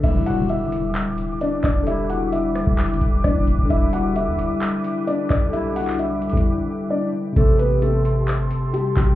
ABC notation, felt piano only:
X:1
M:4/4
L:1/8
Q:1/4=131
K:Em
V:1 name="Felt piano"
[Ee] [Ff] [Ee]4 [Dd] [Dd] | [Ee] [Ff] [Ee]4 [Dd] z | [Ee] [Ff] [Ee]4 [Dd] [Dd] | [Ee] [Ff] [Ee]4 [Dd] z |
[A,A] [B,B] [A,A]4 [G,G] [G,G] |]